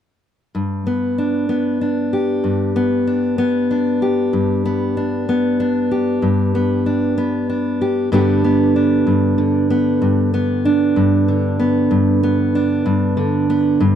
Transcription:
0.55 G2
0.87 B3
1.18 D4
1.49 B3
1.81 D4
2.13 G4
2.44 G2
2.76 B3
3.07 D4
3.38 B3
3.71 D4
4.02 G4
4.33 G2
4.65 B3
4.97 D4
5.29 B3
5.60 D4
5.91 G4
6.22 G2
6.55 B3
6.86 D4
7.18 B3
7.50 D4
7.81 G4
8.12 G2 D3 B3 D4 G4
8.44 B3
8.76 D4
9.07 G2
9.38 D3
9.70 B3
10.02 G2
10.34 B3
10.65 D4
10.96 G2
11.28 D3
11.59 B3
11.91 G2
12.23 B3
12.55 D4
12.86 G2
13.17 D3
13.50 B3
13.80 G2

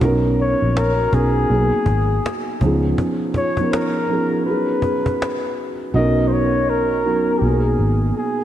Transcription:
0.00 B1 F#3 B3 C#4 D#4 A#4, cajon bass
0.40 C#5, cajon slap
0.62 A#1, cajon slap
0.77 A#4, cajon slap
1.01 cajon slap
1.12 B1 F#3 B3 C#4 D#4 G#4 A#4, cajon bass
1.38 cajon slap
1.49 B1 F#3 A#3 B3 D#4 G#4, cajon slap
1.86 G#1, cajon bass
2.12 cajon slap
2.26 cajon slap
2.61 C#2 F3 B3 C#4, cajon bass
2.65 D#4 G#4
2.86 cajon slap
2.98 cajon bass
3.24 cajon slap
3.34 C#5, cajon bass
3.57 F3 B3 C#4, cajon bass
3.61 D#4 A#4
3.73 A#4, cajon slap
4.08 F3 B3 C#4 D#4, cajon slap
4.13 G#4
4.34 cajon slap
4.46 F#3 B3 C#4 D#4 B4, cajon slap
4.50 G#4
4.71 cajon slap
4.82 cajon bass
5.06 cajon bass
5.22 cajon slap
5.46 cajon slap
5.58 cajon slap
5.82 cajon slap
5.94 B1 F#3 B3 C#4 D#4 A#4 D#5
6.28 C5
6.33 C#5
6.70 A#4
7.05 F#3 B3 C#4 D#4 A#4
7.39 B1 B2 F#3 G4
7.43 A#3 B3 D#4 F#4 G#4
7.51 G#4
7.79 G#1
8.17 G#4

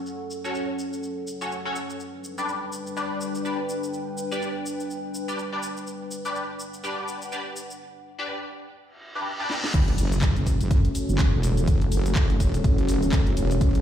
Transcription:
Already playing: F#3 C#4 A4 F#5
0.06 shaker
0.31 shaker
0.44 C#4 F#4 A4 C#5, shaker
0.55 shaker
0.79 shaker
0.93 shaker
1.03 shaker
1.28 shaker
1.41 C#4 F#4 A4 C#5, shaker
1.52 shaker
1.65 C#4 F#4 A4 C#5
1.76 shaker
1.90 shaker
2.00 G3 D4 B4, shaker
2.24 shaker
2.38 D4 G4 B4 D5, shaker
2.48 B4, shaker
2.73 shaker
2.87 shaker
2.97 D4 G4 B4 D5, shaker
3.13 G5
3.21 shaker
3.35 shaker
3.45 D4 G4 B4 D5, shaker
3.69 shaker
3.83 shaker
3.94 shaker
4.18 shaker
4.32 D4 G4 B4 D5, shaker
4.42 shaker
4.66 shaker
4.80 shaker
4.90 shaker
5.15 shaker
5.28 D4 G4 B4 D5, shaker
5.39 shaker
5.52 D4 G4 B4 D5
5.63 shaker
5.77 shaker
5.87 shaker
6.11 shaker
6.25 D4 G4 B4 D5, shaker
6.36 shaker
6.53 F#5
6.60 shaker
6.74 shaker
6.84 D4 G4 B4 D5, shaker
7.08 shaker
7.22 shaker
7.32 D4 G4 B4 D5, shaker
7.57 shaker
7.71 shaker
8.19 D4 G4 B4 D5
8.77 reverse cymbal
9.15 D4 G4 B4 D5
9.40 D4 G4 B4 D5
9.50 snare
9.64 snare
9.74 F#1 A3 C#4 F#4, kick, closed hi-hat, crash, impact, shaker
9.88 closed hi-hat
9.98 F#1, open hi-hat, shaker
10.12 closed hi-hat, shaker
10.22 kick, clap, closed hi-hat, shaker
10.32 A4
10.36 F#1, closed hi-hat
10.47 kick, open hi-hat, shaker
10.61 F#1, closed hi-hat, shaker
10.71 F#1, kick, closed hi-hat, shaker
10.85 closed hi-hat
10.95 open hi-hat, shaker
11.09 F#1, shaker
11.19 kick, clap, closed hi-hat, shaker
11.33 E1
11.43 open hi-hat, shaker
11.57 closed hi-hat, shaker
11.68 F#1, kick, closed hi-hat, shaker
11.82 closed hi-hat
11.92 open hi-hat, shaker
12.06 closed hi-hat, shaker
12.15 F#1, kick, clap, closed hi-hat, shaker
12.30 closed hi-hat
12.40 kick, open hi-hat, shaker
12.54 closed hi-hat, shaker
12.64 F#1, kick, closed hi-hat, shaker
12.78 closed hi-hat
12.89 open hi-hat, shaker
13.03 closed hi-hat, shaker
13.12 F#1, kick, clap, closed hi-hat, shaker
13.27 closed hi-hat
13.37 E1, open hi-hat, shaker
13.51 closed hi-hat, shaker
13.61 F#1, kick, closed hi-hat, shaker
13.75 closed hi-hat

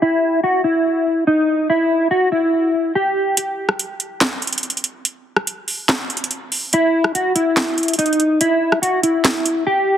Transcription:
0.02 E4
0.44 F#4
0.64 E4
1.27 D#4
1.70 E4
2.11 F#4
2.32 E4
2.95 G4
3.37 closed hi-hat
3.69 cross-stick
3.79 closed hi-hat
4.00 closed hi-hat
4.21 cross-stick, snare, clap, closed hi-hat
4.42 closed hi-hat
4.47 closed hi-hat
4.53 closed hi-hat
4.58 closed hi-hat
4.63 closed hi-hat
4.70 closed hi-hat
4.77 closed hi-hat
4.84 closed hi-hat
5.05 closed hi-hat
5.37 cross-stick
5.47 closed hi-hat
5.68 open hi-hat
5.89 cross-stick, snare, clap, closed hi-hat
6.10 closed hi-hat
6.17 closed hi-hat
6.24 closed hi-hat
6.31 closed hi-hat
6.52 open hi-hat
6.73 E4, closed hi-hat
7.04 cross-stick
7.15 F#4, closed hi-hat
7.35 E4, closed hi-hat
7.57 cross-stick, snare, clap, closed hi-hat
7.78 closed hi-hat
7.83 closed hi-hat
7.88 closed hi-hat
7.93 closed hi-hat
7.98 D#4, closed hi-hat
8.06 closed hi-hat
8.13 closed hi-hat
8.20 closed hi-hat
8.41 E4, closed hi-hat
8.72 cross-stick
8.82 F#4, closed hi-hat
9.03 E4, closed hi-hat
9.25 snare, clap, closed hi-hat
9.46 closed hi-hat
9.67 G4

